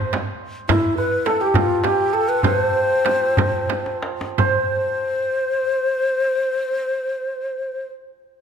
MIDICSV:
0, 0, Header, 1, 5, 480
1, 0, Start_track
1, 0, Tempo, 570885
1, 579, Time_signature, 6, 3, 24, 8
1, 1545, Tempo, 606673
1, 2505, Tempo, 646552
1, 2985, Tempo, 701754
1, 6210, End_track
2, 0, Start_track
2, 0, Title_t, "Ney"
2, 0, Program_c, 0, 77
2, 0, Note_on_c, 0, 72, 84
2, 108, Note_off_c, 0, 72, 0
2, 578, Note_on_c, 0, 64, 83
2, 801, Note_off_c, 0, 64, 0
2, 818, Note_on_c, 0, 71, 84
2, 1059, Note_on_c, 0, 69, 85
2, 1071, Note_off_c, 0, 71, 0
2, 1187, Note_on_c, 0, 67, 82
2, 1200, Note_off_c, 0, 69, 0
2, 1306, Note_on_c, 0, 65, 90
2, 1318, Note_off_c, 0, 67, 0
2, 1548, Note_on_c, 0, 67, 81
2, 1560, Note_off_c, 0, 65, 0
2, 1783, Note_on_c, 0, 69, 88
2, 1795, Note_off_c, 0, 67, 0
2, 1901, Note_on_c, 0, 71, 90
2, 1913, Note_off_c, 0, 69, 0
2, 2018, Note_off_c, 0, 71, 0
2, 2032, Note_on_c, 0, 71, 97
2, 2151, Note_off_c, 0, 71, 0
2, 2151, Note_on_c, 0, 72, 97
2, 3195, Note_off_c, 0, 72, 0
2, 3461, Note_on_c, 0, 72, 85
2, 5822, Note_off_c, 0, 72, 0
2, 6210, End_track
3, 0, Start_track
3, 0, Title_t, "Santur"
3, 0, Program_c, 1, 15
3, 0, Note_on_c, 1, 69, 67
3, 0, Note_on_c, 1, 72, 71
3, 0, Note_on_c, 1, 74, 79
3, 0, Note_on_c, 1, 76, 59
3, 190, Note_off_c, 1, 69, 0
3, 555, Note_off_c, 1, 76, 0
3, 596, Note_on_c, 1, 64, 64
3, 736, Note_off_c, 1, 74, 0
3, 824, Note_on_c, 1, 71, 69
3, 875, Note_off_c, 1, 72, 0
3, 1061, Note_on_c, 1, 69, 78
3, 1182, Note_on_c, 1, 67, 65
3, 1304, Note_on_c, 1, 65, 65
3, 1355, Note_off_c, 1, 64, 0
3, 1548, Note_off_c, 1, 67, 0
3, 1551, Note_on_c, 1, 67, 74
3, 1769, Note_off_c, 1, 69, 0
3, 1772, Note_on_c, 1, 69, 76
3, 2015, Note_on_c, 1, 72, 75
3, 2062, Note_off_c, 1, 71, 0
3, 3456, Note_off_c, 1, 72, 0
3, 3459, Note_on_c, 1, 72, 81
3, 3819, Note_off_c, 1, 65, 0
3, 3863, Note_off_c, 1, 67, 0
3, 3912, Note_off_c, 1, 69, 0
3, 5820, Note_off_c, 1, 72, 0
3, 6210, End_track
4, 0, Start_track
4, 0, Title_t, "Frame drum"
4, 109, Note_on_c, 9, 64, 69
4, 193, Note_off_c, 9, 64, 0
4, 581, Note_on_c, 9, 64, 91
4, 665, Note_off_c, 9, 64, 0
4, 1060, Note_on_c, 9, 64, 61
4, 1144, Note_off_c, 9, 64, 0
4, 1306, Note_on_c, 9, 64, 80
4, 1390, Note_off_c, 9, 64, 0
4, 1550, Note_on_c, 9, 64, 64
4, 1629, Note_off_c, 9, 64, 0
4, 2023, Note_on_c, 9, 64, 79
4, 2102, Note_off_c, 9, 64, 0
4, 2510, Note_on_c, 9, 64, 66
4, 2584, Note_off_c, 9, 64, 0
4, 2751, Note_on_c, 9, 64, 79
4, 2825, Note_off_c, 9, 64, 0
4, 2985, Note_on_c, 9, 64, 69
4, 3054, Note_off_c, 9, 64, 0
4, 3453, Note_on_c, 9, 64, 72
4, 3521, Note_off_c, 9, 64, 0
4, 6210, End_track
5, 0, Start_track
5, 0, Title_t, "Tombak"
5, 116, Note_on_c, 9, 63, 66
5, 200, Note_off_c, 9, 63, 0
5, 583, Note_on_c, 9, 64, 88
5, 667, Note_off_c, 9, 64, 0
5, 825, Note_on_c, 9, 62, 24
5, 909, Note_off_c, 9, 62, 0
5, 1063, Note_on_c, 9, 63, 65
5, 1147, Note_off_c, 9, 63, 0
5, 1296, Note_on_c, 9, 64, 79
5, 1380, Note_off_c, 9, 64, 0
5, 1544, Note_on_c, 9, 63, 66
5, 1623, Note_off_c, 9, 63, 0
5, 2015, Note_on_c, 9, 64, 74
5, 2094, Note_off_c, 9, 64, 0
5, 2502, Note_on_c, 9, 63, 63
5, 2577, Note_off_c, 9, 63, 0
5, 2623, Note_on_c, 9, 62, 23
5, 2697, Note_off_c, 9, 62, 0
5, 2743, Note_on_c, 9, 64, 77
5, 2817, Note_off_c, 9, 64, 0
5, 2982, Note_on_c, 9, 63, 54
5, 3051, Note_off_c, 9, 63, 0
5, 3097, Note_on_c, 9, 62, 62
5, 3165, Note_off_c, 9, 62, 0
5, 3209, Note_on_c, 9, 63, 68
5, 3278, Note_off_c, 9, 63, 0
5, 3336, Note_on_c, 9, 62, 84
5, 3404, Note_off_c, 9, 62, 0
5, 3457, Note_on_c, 9, 64, 72
5, 3525, Note_off_c, 9, 64, 0
5, 6210, End_track
0, 0, End_of_file